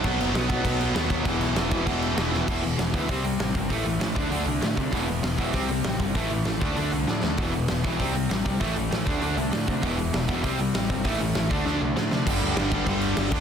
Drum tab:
CC |xxxxxxxx|xxxxxxx-|x-------|--------|
HH |--------|--------|-ooooooo|oooooooo|
SD |--o---o-|--o---oo|--o---o-|--o---o-|
BD |o--oo--o|o--oo---|o--oo--o|o--o---o|

CC |--------|--------|--------|--------|
HH |oooooooo|ooo-oo--|oooooooo|oooooooo|
SD |--o---o-|--o---oo|--o---o-|--o---o-|
BD |o--oo--o|o--o----|o--oo--o|o--o---o|

CC |--------|--------|xxxxxxxx|
HH |oooooooo|ooo-----|--------|
SD |--o---o-|--o-o-oo|--o---o-|
BD |o--oo--o|o--o----|o--oo--o|